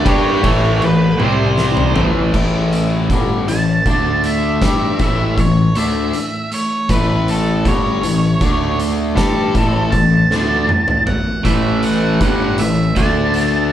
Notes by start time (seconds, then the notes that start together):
0.04 G2 G3 D4 G4, kick, ride
0.08 C#5
0.43 A1 A2 E3 A3, kick, ride
0.82 A1 A2 E3 B4, ride
1.20 C2 C3 G3 C4, high tom
1.24 C5
1.58 snare
1.77 mid tom
1.95 A1 A2 E3 A3, floor tom
2.32 A1 A2 E3 A3, kick, crash
2.73 A3, closed hi-hat
3.10 G1 G2 D3 G3 C#4, kick, closed hi-hat
3.48 A1 A2 E3 A3 A5, closed hi-hat
3.86 D2 D3 A3 D4, kick, closed hi-hat
4.24 A3 E5, closed hi-hat
4.62 G2 A2 G3 D4 G4, kick, snare, closed hi-hat
4.99 A1 A2 E3 A3, kick, closed hi-hat
5.38 A1 A2 E3 C#5, kick, closed hi-hat
5.75 D2 D3 A3 D4 E5, closed hi-hat
6.13 E3, closed hi-hat
6.51 A3 C#5, closed hi-hat
6.89 A1 A2 E3 A3 B4, kick, closed hi-hat
7.27 A3 A4, closed hi-hat
7.65 G1 G2 D3 G3 C#4 C#5, kick, closed hi-hat
8.03 A1 A2 E3 A3, closed hi-hat
8.41 D2 D3 A3 D4, kick, closed hi-hat
8.79 A3, closed hi-hat
9.16 G2 A2 G3 D4 G4 A4, kick, snare, closed hi-hat
9.54 A1 A2 E3 A3, kick, closed hi-hat
9.92 A1 A2 E3 A5, kick, closed hi-hat
10.31 D2 D3 A3 D4, snare
10.69 E3, mid tom
10.88 mid tom
11.07 A3 F#5, floor tom
11.44 A1 A2 E3 A3 E5, kick, closed hi-hat
11.83 A3 F#5, closed hi-hat
12.21 G1 G2 D3 G3 C#4, kick, closed hi-hat
12.58 A1 A2 E3 A3 E5, closed hi-hat
12.96 D2 D3 A3 D4 A5, kick, closed hi-hat
13.34 A3, closed hi-hat